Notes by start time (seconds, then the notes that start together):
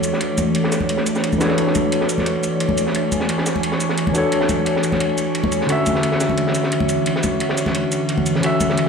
Already playing: E3 A3 D4 F#4 A4 C#5
0.03 closed hi-hat, ride, cabasa
0.13 snare
0.20 closed hi-hat, ride
0.38 closed hi-hat, ride, high conga, cabasa
0.55 closed hi-hat, ride
0.64 snare
0.72 snare, closed hi-hat, ride, cabasa
0.81 high conga
0.89 closed hi-hat, ride
0.97 snare
1.06 closed hi-hat, ride, cabasa
1.15 snare, cabasa
1.23 closed hi-hat, ride
1.33 high conga, cabasa
1.38 E3 D4 F#4, snare, closed hi-hat, ride, cabasa
1.42 A4 C#5
1.49 snare, ride
1.58 closed hi-hat, ride
1.67 snare
1.75 closed hi-hat, ride, high conga, cabasa
1.92 closed hi-hat, ride
2.01 snare
2.09 G#5, closed hi-hat, ride, cabasa
2.18 snare, high conga
2.26 closed hi-hat, ride
2.35 ride
2.43 closed hi-hat, ride, cabasa
2.60 closed hi-hat, ride
2.69 high conga
2.77 closed hi-hat, ride, cabasa
2.87 snare
2.95 closed hi-hat, ride
3.12 closed hi-hat, ride, high conga, cabasa
3.20 snare
3.29 closed hi-hat, ride
3.38 snare
3.46 snare, closed hi-hat, ride, cabasa
3.56 high conga
3.63 closed hi-hat, ride
3.72 snare
3.80 closed hi-hat, ride, cabasa
3.89 snare
3.98 closed hi-hat, ride
4.07 high conga
4.12 E3 D4 F#4, closed hi-hat, ride, cabasa
4.16 A4 C#5
4.32 closed hi-hat, ride
4.41 snare
4.49 closed hi-hat, ride, high conga, cabasa
4.66 closed hi-hat, ride
4.76 snare
4.83 closed hi-hat, ride, cabasa
4.92 snare, high conga
5.00 closed hi-hat, ride
5.09 ride
5.18 closed hi-hat, ride, cabasa
5.35 closed hi-hat, ride
5.44 high conga
5.52 closed hi-hat, ride, cabasa
5.61 snare
5.66 D3 E3 C#4 F#4, closed hi-hat, ride
5.72 E5
5.86 closed hi-hat, ride, high conga, cabasa
5.95 snare
6.03 closed hi-hat, ride
6.12 snare
6.20 snare, closed hi-hat, ride, cabasa
6.29 high conga
6.38 closed hi-hat, ride
6.47 snare
6.55 closed hi-hat, ride, cabasa
6.63 snare
6.72 closed hi-hat, ride
6.80 high conga
6.89 closed hi-hat, ride, cabasa
7.06 closed hi-hat, ride
7.16 snare
7.23 closed hi-hat, ride, high conga, cabasa
7.40 closed hi-hat, ride
7.49 snare
7.57 closed hi-hat, ride, cabasa
7.66 snare, high conga
7.75 closed hi-hat, ride
7.83 ride
7.92 closed hi-hat, ride, cabasa
8.09 closed hi-hat, ride
8.18 high conga
8.26 closed hi-hat, ride, cabasa
8.35 snare
8.40 D3 C#4 F#4, closed hi-hat, ride
8.46 E5
8.60 closed hi-hat, ride, high conga, cabasa
8.70 snare
8.77 closed hi-hat, ride